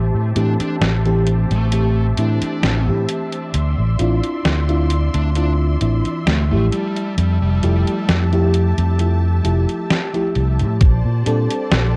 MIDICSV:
0, 0, Header, 1, 7, 480
1, 0, Start_track
1, 0, Key_signature, -1, "minor"
1, 0, Tempo, 909091
1, 1869, Time_signature, 4, 2, 24, 8
1, 6318, End_track
2, 0, Start_track
2, 0, Title_t, "String section"
2, 0, Program_c, 0, 48
2, 0, Note_on_c, 0, 67, 76
2, 0, Note_on_c, 0, 72, 70
2, 0, Note_on_c, 0, 76, 69
2, 0, Note_on_c, 0, 81, 83
2, 1847, Note_off_c, 0, 67, 0
2, 1847, Note_off_c, 0, 72, 0
2, 1847, Note_off_c, 0, 81, 0
2, 1870, Note_on_c, 0, 74, 72
2, 1870, Note_on_c, 0, 84, 91
2, 3533, Note_off_c, 0, 74, 0
2, 3533, Note_off_c, 0, 84, 0
2, 3551, Note_on_c, 0, 67, 73
2, 3551, Note_on_c, 0, 81, 85
2, 5688, Note_off_c, 0, 76, 0
2, 5689, Note_off_c, 0, 67, 0
2, 5689, Note_off_c, 0, 81, 0
2, 5709, Note_on_c, 0, 67, 86
2, 5709, Note_on_c, 0, 72, 82
2, 5709, Note_on_c, 0, 74, 80
2, 5710, Note_on_c, 0, 81, 98
2, 6318, Note_off_c, 0, 67, 0
2, 6318, Note_off_c, 0, 72, 0
2, 6318, Note_off_c, 0, 74, 0
2, 6318, Note_off_c, 0, 81, 0
2, 6318, End_track
3, 0, Start_track
3, 0, Title_t, "FM electric piano"
3, 0, Program_c, 1, 5
3, 0, Note_on_c, 1, 52, 73
3, 0, Note_on_c, 1, 57, 64
3, 0, Note_on_c, 1, 60, 64
3, 0, Note_on_c, 1, 67, 79
3, 159, Note_off_c, 1, 52, 0
3, 162, Note_off_c, 1, 57, 0
3, 164, Note_off_c, 1, 60, 0
3, 167, Note_off_c, 1, 67, 0
3, 185, Note_on_c, 1, 52, 86
3, 189, Note_on_c, 1, 57, 79
3, 191, Note_on_c, 1, 60, 76
3, 193, Note_on_c, 1, 67, 95
3, 524, Note_off_c, 1, 52, 0
3, 526, Note_off_c, 1, 57, 0
3, 527, Note_off_c, 1, 60, 0
3, 528, Note_off_c, 1, 67, 0
3, 554, Note_on_c, 1, 52, 87
3, 557, Note_on_c, 1, 57, 78
3, 560, Note_on_c, 1, 60, 78
3, 562, Note_on_c, 1, 67, 95
3, 881, Note_off_c, 1, 52, 0
3, 882, Note_off_c, 1, 57, 0
3, 884, Note_off_c, 1, 60, 0
3, 885, Note_off_c, 1, 67, 0
3, 906, Note_on_c, 1, 52, 73
3, 909, Note_on_c, 1, 57, 64
3, 914, Note_on_c, 1, 60, 63
3, 915, Note_on_c, 1, 67, 76
3, 1121, Note_off_c, 1, 52, 0
3, 1122, Note_off_c, 1, 57, 0
3, 1124, Note_off_c, 1, 60, 0
3, 1125, Note_off_c, 1, 67, 0
3, 1151, Note_on_c, 1, 52, 69
3, 1153, Note_on_c, 1, 57, 62
3, 1156, Note_on_c, 1, 60, 64
3, 1158, Note_on_c, 1, 64, 80
3, 1487, Note_off_c, 1, 52, 0
3, 1488, Note_off_c, 1, 57, 0
3, 1489, Note_off_c, 1, 60, 0
3, 1490, Note_off_c, 1, 64, 0
3, 1516, Note_on_c, 1, 52, 70
3, 1518, Note_on_c, 1, 57, 62
3, 1522, Note_on_c, 1, 60, 67
3, 1525, Note_on_c, 1, 67, 78
3, 1856, Note_off_c, 1, 52, 0
3, 1857, Note_off_c, 1, 57, 0
3, 1859, Note_off_c, 1, 60, 0
3, 1860, Note_off_c, 1, 67, 0
3, 2107, Note_on_c, 1, 64, 88
3, 2111, Note_on_c, 1, 60, 77
3, 2112, Note_on_c, 1, 62, 79
3, 2115, Note_on_c, 1, 65, 92
3, 2445, Note_off_c, 1, 64, 0
3, 2447, Note_off_c, 1, 60, 0
3, 2447, Note_off_c, 1, 62, 0
3, 2449, Note_off_c, 1, 65, 0
3, 2475, Note_on_c, 1, 64, 86
3, 2477, Note_on_c, 1, 60, 77
3, 2480, Note_on_c, 1, 62, 77
3, 2483, Note_on_c, 1, 65, 97
3, 2801, Note_off_c, 1, 64, 0
3, 2802, Note_off_c, 1, 60, 0
3, 2804, Note_off_c, 1, 62, 0
3, 2805, Note_off_c, 1, 65, 0
3, 2829, Note_on_c, 1, 64, 71
3, 2832, Note_on_c, 1, 60, 68
3, 2834, Note_on_c, 1, 62, 67
3, 2837, Note_on_c, 1, 65, 80
3, 3042, Note_off_c, 1, 64, 0
3, 3043, Note_off_c, 1, 60, 0
3, 3045, Note_off_c, 1, 62, 0
3, 3046, Note_off_c, 1, 65, 0
3, 3066, Note_on_c, 1, 52, 70
3, 3068, Note_on_c, 1, 60, 69
3, 3072, Note_on_c, 1, 62, 64
3, 3073, Note_on_c, 1, 64, 83
3, 3404, Note_off_c, 1, 52, 0
3, 3405, Note_off_c, 1, 60, 0
3, 3407, Note_off_c, 1, 62, 0
3, 3408, Note_off_c, 1, 64, 0
3, 3429, Note_on_c, 1, 53, 72
3, 3435, Note_on_c, 1, 57, 63
3, 3440, Note_on_c, 1, 64, 67
3, 3445, Note_on_c, 1, 67, 80
3, 3999, Note_off_c, 1, 53, 0
3, 4001, Note_off_c, 1, 57, 0
3, 4004, Note_off_c, 1, 64, 0
3, 4007, Note_off_c, 1, 67, 0
3, 4027, Note_on_c, 1, 53, 84
3, 4030, Note_on_c, 1, 57, 83
3, 4032, Note_on_c, 1, 64, 78
3, 4034, Note_on_c, 1, 67, 95
3, 4365, Note_off_c, 1, 53, 0
3, 4366, Note_off_c, 1, 57, 0
3, 4367, Note_off_c, 1, 64, 0
3, 4368, Note_off_c, 1, 67, 0
3, 4393, Note_on_c, 1, 53, 87
3, 4394, Note_on_c, 1, 57, 79
3, 4397, Note_on_c, 1, 64, 81
3, 4401, Note_on_c, 1, 67, 93
3, 4720, Note_off_c, 1, 53, 0
3, 4721, Note_off_c, 1, 57, 0
3, 4723, Note_off_c, 1, 64, 0
3, 4724, Note_off_c, 1, 67, 0
3, 4743, Note_on_c, 1, 53, 74
3, 4747, Note_on_c, 1, 57, 65
3, 4749, Note_on_c, 1, 64, 69
3, 4752, Note_on_c, 1, 67, 80
3, 4959, Note_off_c, 1, 53, 0
3, 4961, Note_off_c, 1, 57, 0
3, 4962, Note_off_c, 1, 64, 0
3, 4963, Note_off_c, 1, 67, 0
3, 4981, Note_on_c, 1, 53, 74
3, 4984, Note_on_c, 1, 57, 69
3, 4987, Note_on_c, 1, 64, 66
3, 4990, Note_on_c, 1, 67, 83
3, 5322, Note_off_c, 1, 53, 0
3, 5323, Note_off_c, 1, 57, 0
3, 5325, Note_off_c, 1, 64, 0
3, 5326, Note_off_c, 1, 67, 0
3, 5350, Note_on_c, 1, 53, 74
3, 5354, Note_on_c, 1, 57, 69
3, 5355, Note_on_c, 1, 64, 66
3, 5359, Note_on_c, 1, 67, 78
3, 5693, Note_off_c, 1, 53, 0
3, 5695, Note_off_c, 1, 57, 0
3, 5695, Note_off_c, 1, 64, 0
3, 5697, Note_off_c, 1, 67, 0
3, 5945, Note_on_c, 1, 55, 90
3, 5948, Note_on_c, 1, 60, 85
3, 5950, Note_on_c, 1, 62, 81
3, 5952, Note_on_c, 1, 69, 101
3, 6284, Note_off_c, 1, 55, 0
3, 6285, Note_off_c, 1, 60, 0
3, 6286, Note_off_c, 1, 62, 0
3, 6287, Note_off_c, 1, 69, 0
3, 6318, End_track
4, 0, Start_track
4, 0, Title_t, "Lead electric guitar"
4, 0, Program_c, 2, 29
4, 195, Note_on_c, 2, 62, 82
4, 273, Note_off_c, 2, 62, 0
4, 319, Note_on_c, 2, 62, 71
4, 390, Note_off_c, 2, 62, 0
4, 801, Note_on_c, 2, 57, 88
4, 1084, Note_off_c, 2, 57, 0
4, 1153, Note_on_c, 2, 62, 82
4, 1518, Note_off_c, 2, 62, 0
4, 2718, Note_on_c, 2, 62, 84
4, 2789, Note_off_c, 2, 62, 0
4, 2834, Note_on_c, 2, 62, 69
4, 2913, Note_off_c, 2, 62, 0
4, 3310, Note_on_c, 2, 57, 81
4, 3391, Note_off_c, 2, 57, 0
4, 3438, Note_on_c, 2, 57, 70
4, 3509, Note_off_c, 2, 57, 0
4, 3550, Note_on_c, 2, 55, 82
4, 3767, Note_off_c, 2, 55, 0
4, 3791, Note_on_c, 2, 55, 84
4, 3892, Note_off_c, 2, 55, 0
4, 3918, Note_on_c, 2, 55, 83
4, 4270, Note_off_c, 2, 55, 0
4, 6318, End_track
5, 0, Start_track
5, 0, Title_t, "Fingered electric bass"
5, 0, Program_c, 3, 33
5, 0, Note_on_c, 3, 33, 87
5, 55, Note_off_c, 3, 33, 0
5, 75, Note_on_c, 3, 45, 85
5, 169, Note_off_c, 3, 45, 0
5, 189, Note_on_c, 3, 45, 79
5, 295, Note_off_c, 3, 45, 0
5, 427, Note_on_c, 3, 33, 76
5, 761, Note_off_c, 3, 33, 0
5, 796, Note_on_c, 3, 33, 93
5, 1119, Note_off_c, 3, 33, 0
5, 1149, Note_on_c, 3, 45, 67
5, 1255, Note_off_c, 3, 45, 0
5, 1389, Note_on_c, 3, 33, 90
5, 1517, Note_on_c, 3, 45, 91
5, 1525, Note_off_c, 3, 33, 0
5, 1611, Note_off_c, 3, 45, 0
5, 1870, Note_on_c, 3, 38, 88
5, 1975, Note_off_c, 3, 38, 0
5, 1997, Note_on_c, 3, 33, 83
5, 2091, Note_off_c, 3, 33, 0
5, 2111, Note_on_c, 3, 33, 76
5, 2216, Note_off_c, 3, 33, 0
5, 2351, Note_on_c, 3, 38, 78
5, 2683, Note_off_c, 3, 38, 0
5, 2717, Note_on_c, 3, 38, 89
5, 3039, Note_off_c, 3, 38, 0
5, 3071, Note_on_c, 3, 33, 72
5, 3176, Note_off_c, 3, 33, 0
5, 3310, Note_on_c, 3, 38, 96
5, 3438, Note_on_c, 3, 33, 86
5, 3446, Note_off_c, 3, 38, 0
5, 3531, Note_off_c, 3, 33, 0
5, 3790, Note_on_c, 3, 41, 90
5, 3895, Note_off_c, 3, 41, 0
5, 3916, Note_on_c, 3, 29, 86
5, 4010, Note_off_c, 3, 29, 0
5, 4031, Note_on_c, 3, 29, 79
5, 4136, Note_off_c, 3, 29, 0
5, 4272, Note_on_c, 3, 41, 79
5, 4604, Note_off_c, 3, 41, 0
5, 4636, Note_on_c, 3, 41, 92
5, 4959, Note_off_c, 3, 41, 0
5, 4989, Note_on_c, 3, 29, 74
5, 5095, Note_off_c, 3, 29, 0
5, 5470, Note_on_c, 3, 36, 77
5, 5598, Note_on_c, 3, 45, 71
5, 5606, Note_off_c, 3, 36, 0
5, 5691, Note_off_c, 3, 45, 0
5, 5708, Note_on_c, 3, 34, 103
5, 5814, Note_off_c, 3, 34, 0
5, 5834, Note_on_c, 3, 46, 96
5, 5929, Note_off_c, 3, 46, 0
5, 5948, Note_on_c, 3, 46, 82
5, 6055, Note_off_c, 3, 46, 0
5, 6189, Note_on_c, 3, 34, 80
5, 6318, Note_off_c, 3, 34, 0
5, 6318, End_track
6, 0, Start_track
6, 0, Title_t, "Muted fingered electric bass strokes"
6, 314, Note_on_c, 9, 29, 40
6, 367, Note_off_c, 9, 29, 0
6, 1276, Note_on_c, 9, 29, 39
6, 1329, Note_off_c, 9, 29, 0
6, 4158, Note_on_c, 9, 29, 40
6, 4211, Note_off_c, 9, 29, 0
6, 6318, End_track
7, 0, Start_track
7, 0, Title_t, "Drums"
7, 189, Note_on_c, 9, 42, 77
7, 241, Note_off_c, 9, 42, 0
7, 316, Note_on_c, 9, 42, 47
7, 368, Note_off_c, 9, 42, 0
7, 429, Note_on_c, 9, 38, 108
7, 429, Note_on_c, 9, 42, 73
7, 482, Note_off_c, 9, 38, 0
7, 482, Note_off_c, 9, 42, 0
7, 556, Note_on_c, 9, 42, 33
7, 609, Note_off_c, 9, 42, 0
7, 668, Note_on_c, 9, 42, 82
7, 721, Note_off_c, 9, 42, 0
7, 797, Note_on_c, 9, 42, 47
7, 849, Note_off_c, 9, 42, 0
7, 908, Note_on_c, 9, 42, 71
7, 961, Note_off_c, 9, 42, 0
7, 1148, Note_on_c, 9, 42, 73
7, 1201, Note_off_c, 9, 42, 0
7, 1276, Note_on_c, 9, 42, 52
7, 1329, Note_off_c, 9, 42, 0
7, 1389, Note_on_c, 9, 38, 112
7, 1389, Note_on_c, 9, 42, 75
7, 1442, Note_off_c, 9, 38, 0
7, 1442, Note_off_c, 9, 42, 0
7, 1629, Note_on_c, 9, 42, 79
7, 1682, Note_off_c, 9, 42, 0
7, 1755, Note_on_c, 9, 42, 50
7, 1808, Note_off_c, 9, 42, 0
7, 1869, Note_on_c, 9, 42, 73
7, 1922, Note_off_c, 9, 42, 0
7, 2108, Note_on_c, 9, 42, 74
7, 2161, Note_off_c, 9, 42, 0
7, 2237, Note_on_c, 9, 42, 49
7, 2289, Note_off_c, 9, 42, 0
7, 2350, Note_on_c, 9, 38, 112
7, 2350, Note_on_c, 9, 42, 70
7, 2403, Note_off_c, 9, 38, 0
7, 2403, Note_off_c, 9, 42, 0
7, 2477, Note_on_c, 9, 42, 33
7, 2530, Note_off_c, 9, 42, 0
7, 2589, Note_on_c, 9, 42, 79
7, 2642, Note_off_c, 9, 42, 0
7, 2716, Note_on_c, 9, 42, 47
7, 2769, Note_off_c, 9, 42, 0
7, 2828, Note_on_c, 9, 42, 73
7, 2881, Note_off_c, 9, 42, 0
7, 3068, Note_on_c, 9, 42, 72
7, 3121, Note_off_c, 9, 42, 0
7, 3196, Note_on_c, 9, 42, 49
7, 3248, Note_off_c, 9, 42, 0
7, 3310, Note_on_c, 9, 38, 117
7, 3310, Note_on_c, 9, 42, 78
7, 3363, Note_off_c, 9, 38, 0
7, 3363, Note_off_c, 9, 42, 0
7, 3550, Note_on_c, 9, 42, 76
7, 3603, Note_off_c, 9, 42, 0
7, 3677, Note_on_c, 9, 42, 50
7, 3730, Note_off_c, 9, 42, 0
7, 3790, Note_on_c, 9, 42, 70
7, 3843, Note_off_c, 9, 42, 0
7, 4029, Note_on_c, 9, 42, 71
7, 4082, Note_off_c, 9, 42, 0
7, 4157, Note_on_c, 9, 42, 47
7, 4210, Note_off_c, 9, 42, 0
7, 4270, Note_on_c, 9, 38, 112
7, 4270, Note_on_c, 9, 42, 69
7, 4323, Note_off_c, 9, 38, 0
7, 4323, Note_off_c, 9, 42, 0
7, 4397, Note_on_c, 9, 42, 34
7, 4450, Note_off_c, 9, 42, 0
7, 4509, Note_on_c, 9, 42, 77
7, 4562, Note_off_c, 9, 42, 0
7, 4636, Note_on_c, 9, 42, 48
7, 4689, Note_off_c, 9, 42, 0
7, 4749, Note_on_c, 9, 42, 71
7, 4801, Note_off_c, 9, 42, 0
7, 4988, Note_on_c, 9, 42, 69
7, 5041, Note_off_c, 9, 42, 0
7, 5116, Note_on_c, 9, 42, 48
7, 5169, Note_off_c, 9, 42, 0
7, 5229, Note_on_c, 9, 38, 115
7, 5229, Note_on_c, 9, 42, 76
7, 5282, Note_off_c, 9, 38, 0
7, 5282, Note_off_c, 9, 42, 0
7, 5356, Note_on_c, 9, 42, 34
7, 5408, Note_off_c, 9, 42, 0
7, 5467, Note_on_c, 9, 42, 76
7, 5519, Note_off_c, 9, 42, 0
7, 5594, Note_on_c, 9, 42, 48
7, 5647, Note_off_c, 9, 42, 0
7, 5707, Note_on_c, 9, 42, 79
7, 5708, Note_on_c, 9, 36, 119
7, 5760, Note_off_c, 9, 42, 0
7, 5761, Note_off_c, 9, 36, 0
7, 5947, Note_on_c, 9, 42, 83
7, 6000, Note_off_c, 9, 42, 0
7, 6075, Note_on_c, 9, 42, 53
7, 6127, Note_off_c, 9, 42, 0
7, 6185, Note_on_c, 9, 38, 119
7, 6185, Note_on_c, 9, 42, 80
7, 6238, Note_off_c, 9, 38, 0
7, 6238, Note_off_c, 9, 42, 0
7, 6318, End_track
0, 0, End_of_file